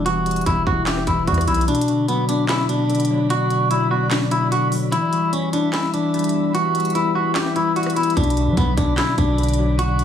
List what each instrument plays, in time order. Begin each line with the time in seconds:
Already playing: 808-style bass E1, tine electric piano E3 G3 B3 E4 E5
0.06 tine electric piano E3, clean electric guitar F#4, closed hi-hat
0.26 tine electric piano G3, closed hi-hat
0.31 closed hi-hat
0.36 closed hi-hat
0.41 closed hi-hat
0.46 808-style bass E1, tine electric piano B3, clean electric guitar E4, kick, closed hi-hat
0.67 808-style bass E1, tine electric piano E4, clean electric guitar F#4, kick
0.87 clean electric guitar G4, tine electric piano E5, snare, clap, closed hi-hat
0.97 cross-stick
1.07 808-style bass E1, tine electric piano E3, clean electric guitar E4, kick, closed hi-hat
1.27 808-style bass E2, tine electric piano G3, clean electric guitar F#4, kick, closed hi-hat
1.34 cross-stick, closed hi-hat
1.41 closed hi-hat
1.48 808-style bass B1, tine electric piano B3, clean electric guitar E4, closed hi-hat, open hi-hat
1.54 closed hi-hat
1.61 closed hi-hat
1.68 tine electric piano B2, clean electric guitar D4, ambient pad F#4 D5 B5, closed hi-hat
1.75 closed hi-hat
1.81 closed hi-hat
1.88 tine electric piano D3, closed hi-hat
2.08 tine electric piano F#3, clean electric guitar B3, closed hi-hat
2.29 tine electric piano B3, clean electric guitar D4, closed hi-hat
2.49 tine electric piano D4, clean electric guitar E4, snare, clap, closed hi-hat
2.69 tine electric piano B2, clean electric guitar D4, closed hi-hat
2.90 tine electric piano D3, closed hi-hat
2.95 closed hi-hat
3.00 closed hi-hat
3.05 closed hi-hat
3.10 tine electric piano F#3
3.30 tine electric piano B2, clean electric guitar F#4, closed hi-hat
3.50 tine electric piano D3, closed hi-hat
3.71 tine electric piano F#3, clean electric guitar E4, closed hi-hat
3.91 tine electric piano B3, clean electric guitar F#4
4.11 tine electric piano D4, snare, clap, closed hi-hat
4.31 tine electric piano B2, clean electric guitar E4, closed hi-hat
4.52 tine electric piano D3, clean electric guitar F#4, closed hi-hat
4.72 tine electric piano F#3, open hi-hat
4.92 tine electric piano E3, ambient pad G3 E5, clean electric guitar E4, closed hi-hat
5.13 tine electric piano G3, closed hi-hat
5.33 tine electric piano B3, clean electric guitar C#4, closed hi-hat
5.53 clean electric guitar D4, tine electric piano E4, closed hi-hat
5.73 clean electric guitar E4, tine electric piano E5, snare, clap, closed hi-hat
5.94 tine electric piano E3, clean electric guitar D4, closed hi-hat
6.14 tine electric piano G3, closed hi-hat
6.19 closed hi-hat
6.24 closed hi-hat
6.29 closed hi-hat
6.34 tine electric piano B3
6.55 tine electric piano E3, clean electric guitar F#4, closed hi-hat
6.75 tine electric piano G3, closed hi-hat
6.80 closed hi-hat
6.85 closed hi-hat
6.90 closed hi-hat
6.95 tine electric piano B3, clean electric guitar E4, closed hi-hat
7.15 tine electric piano E4, clean electric guitar F#4
7.35 clean electric guitar G4, tine electric piano E5, snare, clap, closed hi-hat
7.46 cross-stick
7.56 tine electric piano E3, clean electric guitar E4, closed hi-hat
7.76 tine electric piano G3, clean electric guitar F#4, closed hi-hat
7.83 cross-stick, closed hi-hat
7.90 closed hi-hat
7.96 tine electric piano B3, clean electric guitar E4, closed hi-hat, open hi-hat
8.03 closed hi-hat
8.10 closed hi-hat
8.17 808-style bass B1, tine electric piano B2, clean electric guitar D4, ambient pad F#4 D5, kick, closed hi-hat
8.24 closed hi-hat
8.30 closed hi-hat
8.37 tine electric piano D3, closed hi-hat
8.47 808-style bass F#3
8.57 808-style bass B1, tine electric piano F#3, clean electric guitar B3, kick, closed hi-hat
8.77 808-style bass B1, tine electric piano B3, clean electric guitar D4, kick, closed hi-hat
8.98 tine electric piano D4, clean electric guitar E4, snare, clap, closed hi-hat
9.18 808-style bass B1, tine electric piano B2, clean electric guitar D4, kick, closed hi-hat
9.38 tine electric piano D3, closed hi-hat
9.43 closed hi-hat
9.48 closed hi-hat
9.54 closed hi-hat
9.59 tine electric piano F#3
9.79 tine electric piano B2, clean electric guitar F#4, closed hi-hat
9.99 tine electric piano D3, closed hi-hat